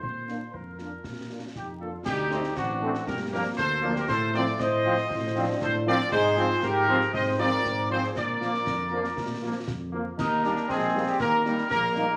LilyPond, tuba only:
\new Staff \with { instrumentName = "Tuba" } { \clef bass \time 2/4 \key f \mixolydian \tempo 4 = 118 bes,4 f,4 | bes,4 f,4 | d,4 a,,4 | g,4 d,4 |
a,4 a,4 | a,4 a,4 | \key ees \major aes,4 aes,4 | aes,4 aes,4 |
bes,4 f,4 | bes,4 f,4 | ees,4 bes,,4 | ees,4 bes,,4 | }